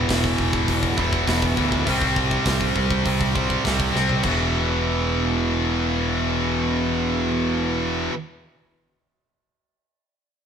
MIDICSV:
0, 0, Header, 1, 5, 480
1, 0, Start_track
1, 0, Key_signature, 1, "minor"
1, 0, Tempo, 593472
1, 1511, Time_signature, 4, 2, 24, 8
1, 8454, End_track
2, 0, Start_track
2, 0, Title_t, "Distorted electric guitar"
2, 0, Program_c, 0, 30
2, 1272, Note_on_c, 0, 52, 74
2, 1286, Note_on_c, 0, 47, 69
2, 1292, Note_on_c, 0, 40, 65
2, 1500, Note_off_c, 0, 47, 0
2, 1507, Note_off_c, 0, 40, 0
2, 1520, Note_off_c, 0, 52, 0
2, 3177, Note_on_c, 0, 60, 77
2, 3192, Note_on_c, 0, 55, 62
2, 3202, Note_on_c, 0, 48, 53
2, 3410, Note_off_c, 0, 60, 0
2, 3418, Note_off_c, 0, 55, 0
2, 3423, Note_off_c, 0, 48, 0
2, 8454, End_track
3, 0, Start_track
3, 0, Title_t, "Distorted electric guitar"
3, 0, Program_c, 1, 30
3, 0, Note_on_c, 1, 40, 87
3, 0, Note_on_c, 1, 47, 75
3, 0, Note_on_c, 1, 52, 90
3, 766, Note_off_c, 1, 40, 0
3, 774, Note_off_c, 1, 47, 0
3, 777, Note_off_c, 1, 52, 0
3, 780, Note_on_c, 1, 52, 74
3, 794, Note_on_c, 1, 47, 66
3, 806, Note_on_c, 1, 40, 69
3, 1013, Note_off_c, 1, 40, 0
3, 1018, Note_off_c, 1, 47, 0
3, 1023, Note_on_c, 1, 40, 73
3, 1039, Note_on_c, 1, 47, 79
3, 1046, Note_off_c, 1, 52, 0
3, 1049, Note_on_c, 1, 52, 83
3, 1493, Note_off_c, 1, 40, 0
3, 1497, Note_off_c, 1, 47, 0
3, 1500, Note_on_c, 1, 48, 74
3, 1512, Note_off_c, 1, 52, 0
3, 1515, Note_on_c, 1, 55, 81
3, 1528, Note_on_c, 1, 60, 89
3, 2692, Note_off_c, 1, 48, 0
3, 2699, Note_off_c, 1, 55, 0
3, 2699, Note_off_c, 1, 60, 0
3, 2709, Note_on_c, 1, 60, 73
3, 2725, Note_on_c, 1, 55, 72
3, 2738, Note_on_c, 1, 48, 64
3, 2936, Note_off_c, 1, 60, 0
3, 2940, Note_off_c, 1, 48, 0
3, 2944, Note_off_c, 1, 55, 0
3, 2949, Note_on_c, 1, 48, 70
3, 2965, Note_on_c, 1, 55, 65
3, 2977, Note_on_c, 1, 60, 71
3, 3416, Note_off_c, 1, 48, 0
3, 3424, Note_off_c, 1, 55, 0
3, 3426, Note_on_c, 1, 40, 76
3, 3430, Note_off_c, 1, 60, 0
3, 3445, Note_on_c, 1, 47, 88
3, 3463, Note_on_c, 1, 52, 84
3, 6563, Note_off_c, 1, 40, 0
3, 6572, Note_off_c, 1, 47, 0
3, 6582, Note_off_c, 1, 52, 0
3, 8454, End_track
4, 0, Start_track
4, 0, Title_t, "Picked electric bass"
4, 0, Program_c, 2, 34
4, 72, Note_on_c, 2, 28, 90
4, 277, Note_off_c, 2, 28, 0
4, 312, Note_on_c, 2, 28, 75
4, 516, Note_off_c, 2, 28, 0
4, 554, Note_on_c, 2, 28, 91
4, 757, Note_off_c, 2, 28, 0
4, 790, Note_on_c, 2, 28, 87
4, 995, Note_off_c, 2, 28, 0
4, 1037, Note_on_c, 2, 28, 86
4, 1239, Note_off_c, 2, 28, 0
4, 1272, Note_on_c, 2, 38, 89
4, 1476, Note_off_c, 2, 38, 0
4, 1514, Note_on_c, 2, 36, 91
4, 1922, Note_off_c, 2, 36, 0
4, 1987, Note_on_c, 2, 36, 88
4, 2193, Note_off_c, 2, 36, 0
4, 2230, Note_on_c, 2, 36, 78
4, 2435, Note_off_c, 2, 36, 0
4, 2475, Note_on_c, 2, 36, 86
4, 2882, Note_off_c, 2, 36, 0
4, 2952, Note_on_c, 2, 36, 84
4, 3156, Note_off_c, 2, 36, 0
4, 3193, Note_on_c, 2, 36, 75
4, 3397, Note_off_c, 2, 36, 0
4, 3427, Note_on_c, 2, 28, 82
4, 6531, Note_off_c, 2, 28, 0
4, 8454, End_track
5, 0, Start_track
5, 0, Title_t, "Drums"
5, 73, Note_on_c, 9, 36, 77
5, 75, Note_on_c, 9, 46, 63
5, 85, Note_on_c, 9, 38, 120
5, 153, Note_off_c, 9, 36, 0
5, 156, Note_off_c, 9, 46, 0
5, 166, Note_off_c, 9, 38, 0
5, 193, Note_on_c, 9, 36, 74
5, 274, Note_off_c, 9, 36, 0
5, 311, Note_on_c, 9, 36, 72
5, 392, Note_off_c, 9, 36, 0
5, 431, Note_on_c, 9, 36, 72
5, 511, Note_off_c, 9, 36, 0
5, 551, Note_on_c, 9, 36, 70
5, 551, Note_on_c, 9, 46, 51
5, 631, Note_off_c, 9, 46, 0
5, 632, Note_off_c, 9, 36, 0
5, 670, Note_on_c, 9, 36, 83
5, 751, Note_off_c, 9, 36, 0
5, 790, Note_on_c, 9, 36, 87
5, 871, Note_off_c, 9, 36, 0
5, 912, Note_on_c, 9, 36, 78
5, 992, Note_off_c, 9, 36, 0
5, 1031, Note_on_c, 9, 36, 69
5, 1031, Note_on_c, 9, 46, 54
5, 1041, Note_on_c, 9, 38, 105
5, 1112, Note_off_c, 9, 36, 0
5, 1112, Note_off_c, 9, 46, 0
5, 1121, Note_off_c, 9, 38, 0
5, 1151, Note_on_c, 9, 36, 90
5, 1232, Note_off_c, 9, 36, 0
5, 1271, Note_on_c, 9, 36, 80
5, 1352, Note_off_c, 9, 36, 0
5, 1391, Note_on_c, 9, 36, 84
5, 1472, Note_off_c, 9, 36, 0
5, 1511, Note_on_c, 9, 36, 86
5, 1518, Note_on_c, 9, 46, 50
5, 1592, Note_off_c, 9, 36, 0
5, 1599, Note_off_c, 9, 46, 0
5, 1630, Note_on_c, 9, 36, 72
5, 1711, Note_off_c, 9, 36, 0
5, 1750, Note_on_c, 9, 36, 73
5, 1831, Note_off_c, 9, 36, 0
5, 1870, Note_on_c, 9, 36, 74
5, 1951, Note_off_c, 9, 36, 0
5, 1987, Note_on_c, 9, 46, 52
5, 1988, Note_on_c, 9, 36, 85
5, 1997, Note_on_c, 9, 38, 106
5, 2068, Note_off_c, 9, 46, 0
5, 2069, Note_off_c, 9, 36, 0
5, 2078, Note_off_c, 9, 38, 0
5, 2108, Note_on_c, 9, 36, 78
5, 2189, Note_off_c, 9, 36, 0
5, 2229, Note_on_c, 9, 36, 78
5, 2310, Note_off_c, 9, 36, 0
5, 2350, Note_on_c, 9, 36, 78
5, 2431, Note_off_c, 9, 36, 0
5, 2472, Note_on_c, 9, 36, 78
5, 2475, Note_on_c, 9, 46, 45
5, 2553, Note_off_c, 9, 36, 0
5, 2556, Note_off_c, 9, 46, 0
5, 2594, Note_on_c, 9, 36, 75
5, 2674, Note_off_c, 9, 36, 0
5, 2714, Note_on_c, 9, 36, 85
5, 2795, Note_off_c, 9, 36, 0
5, 2831, Note_on_c, 9, 36, 74
5, 2912, Note_off_c, 9, 36, 0
5, 2952, Note_on_c, 9, 36, 71
5, 2958, Note_on_c, 9, 46, 42
5, 2967, Note_on_c, 9, 38, 99
5, 3033, Note_off_c, 9, 36, 0
5, 3039, Note_off_c, 9, 46, 0
5, 3048, Note_off_c, 9, 38, 0
5, 3071, Note_on_c, 9, 36, 85
5, 3152, Note_off_c, 9, 36, 0
5, 3200, Note_on_c, 9, 38, 62
5, 3281, Note_off_c, 9, 38, 0
5, 3311, Note_on_c, 9, 43, 81
5, 3392, Note_off_c, 9, 43, 0
5, 3423, Note_on_c, 9, 49, 74
5, 3427, Note_on_c, 9, 36, 90
5, 3504, Note_off_c, 9, 49, 0
5, 3508, Note_off_c, 9, 36, 0
5, 8454, End_track
0, 0, End_of_file